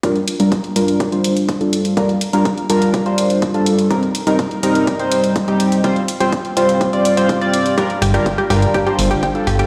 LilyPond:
<<
  \new Staff \with { instrumentName = "Synth arpeggio sound" } { \time 4/4 \key g \minor \tempo 4 = 124 r1 | r1 | r1 | r1 |
g'16 r16 g'16 g'16 r16 g'16 g'16 r16 g'16 g'16 r16 g'16 g'16 r16 g'16 g'16 | }
  \new Staff \with { instrumentName = "Analog polysynth" } { \time 4/4 \key g \minor <g d' f' bes'>16 r8 <g d' f' bes'>16 r8 <g d' f' bes'>8. <g d' f' c''>4 <g d' f' a'>8. | <g d' f' bes'>16 r8 <g d' f' bes'>16 r8 <g d' f' bes'>8. <g d' f' c''>4 <g d' f' a'>8. | <g c' ees' bes'>16 r8 <g c' ees' bes'>16 r8 <g c' ees' bes'>8. <g c' ees' c''>4 <g c' ees' g'>8. | <g c' f' c''>16 r8 <g c' f' c''>16 r8 <g c' f' c''>8. <g c' f' d''>8 <g c' f' c''>8 <g c' f' d''>8. |
<g d' f' bes'>16 r8 <g d' f' bes'>16 r8 <g d' f' bes'>8. <g d' f' c''>4 <g d' f' a'>8. | }
  \new Staff \with { instrumentName = "Analog synth bass" } { \clef bass \time 4/4 \key g \minor r1 | r1 | r1 | r1 |
r8 g,,8 r8 g,,8 r8 g,,8 r8 g,,8 | }
  \new DrumStaff \with { instrumentName = "Drums" } \drummode { \time 4/4 <hh bd>16 hh16 hh16 hh16 <hh bd>16 hh16 hh16 hh16 <hh bd>16 hh16 hh16 hh16 <hh bd>16 hh16 hh16 hh16 | <hh bd>16 hh16 hh16 hh16 <hh bd>16 hh16 hh16 hh16 <hh bd>16 hh16 hh16 hh16 <hh bd>16 hh16 hh16 hh16 | <hh bd>16 hh16 hh16 hh16 <hh bd>16 hh16 hh16 hh16 <hh bd>16 hh16 hh16 hh16 <hh bd>16 hh16 hh16 hh16 | <hh bd>16 hh16 hh16 hh16 <hh bd>16 hh16 hh16 hh16 <hh bd>16 hh16 hh16 hh16 <hh bd>16 hh16 hh16 hh16 |
<hh bd>16 hh16 hho16 hh16 <hh bd>16 hh16 hho16 hh16 <hh bd>16 hh16 hho16 hh16 <hh bd>16 hh16 hho16 hh16 | }
>>